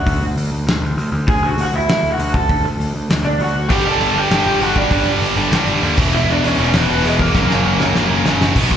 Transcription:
Already playing: F#4 F#5
0.06 D2, kick, open hi-hat
0.21 D2
0.37 D2, open hi-hat
0.52 D2
0.67 D2, snare, open hi-hat
0.82 D2
0.97 D2, open hi-hat
1.12 D2
1.28 D2 G#4 G#5, kick, open hi-hat
1.42 D2
1.46 F#4 F#5
1.58 D2, open hi-hat
1.62 F#4 F#5
1.73 D2 E4 E5
1.89 D2, snare, open hi-hat
2.03 D2
2.12 F#4 F#5
2.19 D2, open hi-hat
2.33 A4 A5, kick
2.49 D2, kick, open hi-hat
2.65 D2
2.79 D2, open hi-hat
2.95 D2
3.10 D2, snare, open hi-hat
3.25 D2 D4 D5
3.40 D2 F#4 F#5, open hi-hat
3.56 D2
3.70 G1 G2 D3 G3 G4 G5, kick, crash
3.85 G1 G2 D3 G3 A4 A5
4.00 G1 G2 D3 G3, open hi-hat
4.16 G1 G2 D3 G3 G4 G5
4.31 G1 G2 D3 G3, snare, open hi-hat
4.46 G1 D3 G3
4.60 G1 G2 D3 G3 F#4 F#5, open hi-hat
4.75 G2 D3 G3 D4 D5, kick
4.90 G1 G2 D3 G3, kick, open hi-hat
5.05 G1 G2 D3 G3
5.20 G1 G2 D3 G3, open hi-hat
5.36 G1 G2 D3 G3
5.52 G1 G2 D3 G3, snare, open hi-hat
5.67 G1 G2 D3 G3
5.82 D#2 G2 D3 G3, open hi-hat
5.98 E1 E2 B2 E3, kick, crash
6.12 E1 E2 B2 E3 E4 E5
6.28 E1 E2 B2 E3 D4 D5
6.43 E1 E2 B2 E3 C#4 C#5, open hi-hat
6.58 E1 E2 B2 E3 C#4 C#5
6.73 E1 E2 B2 E3 B3 B4, snare, open hi-hat
6.89 E1 E2 B2 E3
7.04 E1 B2 E3 G#3 G#4, open hi-hat
7.19 B2 E3 A#3 A#4, kick
7.34 F#1 F#2 C#3 F#3, kick, snare
7.48 F#1 F#2 C#3 F#3, snare
7.63 F#1 F#2 C#3 F#3
7.78 F#1 F#2 C#3 F#3, snare
7.95 F#1 F#2 C#3 F#3, snare
8.09 F#1 F#2 C#3 F#3
8.24 F#1 F#2 C#3 F#3, snare
8.28 F#3
8.40 F#1 C#3 F#3, snare
8.56 B1 B2 F#3 B3, kick, crash
8.71 B1 B2 F#3, kick

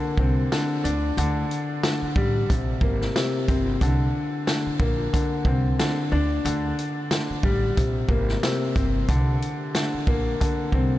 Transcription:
Already playing: D3 A#3
0.17 C2 C4, kick
0.52 D3, snare, closed hi-hat, tambourine
0.84 D2 D4, closed hi-hat
1.17 D2 D3, closed hi-hat
1.51 closed hi-hat
1.83 D3, snare, closed hi-hat, tambourine
2.02 muted upright bass stroke
2.16 A1 G3, kick
2.50 A#1 C3, kick, closed hi-hat
2.81 G#1 A#3, kick
3.01 snare
3.16 C3, snare, closed hi-hat, tambourine
3.48 G1 C4, kick, closed hi-hat
3.81 C2 D3, kick, closed hi-hat
4.47 D3, snare, closed hi-hat, tambourine
4.66 muted upright bass stroke
4.80 A#1 A#3, kick
5.13 D3, kick, closed hi-hat
5.45 C2 C4, kick
5.79 D3, snare, closed hi-hat, tambourine
6.12 D2 D4
6.45 D2 D3, closed hi-hat
6.79 closed hi-hat
7.11 D3, snare, closed hi-hat, tambourine
7.30 muted upright bass stroke
7.43 A1 G3, kick
7.77 A#1 C3, kick, closed hi-hat
8.09 G#1 A#3, kick
8.29 snare
8.43 C3, snare, closed hi-hat, tambourine
8.76 G1 C4, kick, closed hi-hat
9.09 C2 D3, kick, closed hi-hat
9.42 closed hi-hat
9.75 D3, snare, closed hi-hat, tambourine
9.94 muted upright bass stroke
10.07 A#1 A#3, kick
10.40 D3, kick, closed hi-hat
10.72 C2 C4, kick

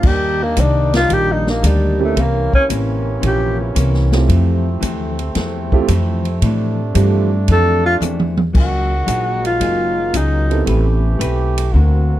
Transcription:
Already playing: D4
0.03 D#2 D#3 G3 A#3 D4 D#4, kick, crash
0.07 G4
0.43 A#3
0.57 C2 D#3 G3 A#3 D4, kick, hi-hat pedal, ride
0.94 F4, snare, ride
1.08 A#1 D#3 G3 A#3 D4, kick, ride
1.13 G4
1.32 D#4
1.47 A#3, snare
1.62 D2 D#3 G3 A#3 D4, kick, hi-hat pedal, ride
1.67 G3
1.99 A#3 C4 C#4 E4 G4
2.04 A3
2.16 C2 C3 E3 A#3 C#4, kick, ride
2.21 A#3
2.53 C#4, muted upright bass stroke, kick
2.69 A1 C3 E3 A#3 C#4, kick, hi-hat pedal, ride
3.21 A#1 C3 E3 A#3 C#4, kick, ride
3.26 G4
3.60 E4
3.75 C2 C3 E3 A#3 C#4, kick, hi-hat pedal, ride
3.94 snare
4.12 A3 C4 E4 F4 G4, snare, ride
4.28 F2 C3 E3 A3 C4, kick, ride
4.80 D2 F2 E3 A3 C4, kick, hi-hat pedal, ride
5.19 ride
5.35 E2 F2 E3 A3 C4, kick, snare, ride
5.72 A3 C4 E4 F4 G4, kick
5.88 F2 E3 A3 C4, kick, hi-hat pedal, ride
6.25 ride
6.42 F2 A2 E3 A3 C4 D4, kick, ride
6.94 F2 G2 E3 A3 C4 E4 F4 G4, kick, hi-hat pedal, ride
7.48 F2 E3 A3 C4 A4, kick, ride
7.86 F4
8.01 E2 F2 E3 A3 C4, hi-hat pedal, mid tom
8.19 mid tom
8.37 mid tom
8.53 C#2 D#3 F#3 G#3 A#3 D#4 G#4, kick, crash
8.60 F#4
9.06 A#1 F#3 A#3 D#4 G#4, kick, hi-hat pedal, ride
9.45 F4, ride
9.60 F#1 F#3 A#3 D#4 G#4, kick, ride
10.14 C#2 F#3 A#3 D#4 G#4, kick, hi-hat pedal, ride
10.50 B3 C4 E4 G4 A4, ride
10.66 A1 E3 A3 C4 G4 B4, kick, ride
11.19 B1 A3 C4 G4 B4, kick, hi-hat pedal, ride
11.58 ride
11.73 D2 D3 A#3 C4 F#4 A#4, kick

